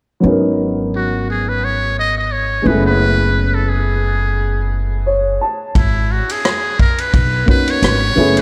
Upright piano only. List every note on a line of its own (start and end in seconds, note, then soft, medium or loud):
0.20 2.59 F#3 medium
0.20 2.60 B3 medium
0.20 2.61 C#4 medium
0.26 2.62 D#4 medium
0.26 2.63 A#4 medium
2.62 2.71 G#3 soft
2.62 5.36 B3 medium
2.62 5.37 C#4 soft
2.67 5.39 A3 medium
2.67 5.38 E4 medium
2.67 5.39 G#4 medium
5.06 5.38 C#5 medium
5.41 5.73 A5 medium
7.46 7.97 A#3 medium
7.46 7.97 B3 soft
7.46 7.98 C#4 medium
7.46 7.98 D#4 medium
7.46 7.99 F#4 medium
8.15 8.42 A3 medium
8.15 8.42 B3 medium
8.15 8.42 C#4 medium
8.15 8.42 E4 medium
8.15 8.42 G#4 medium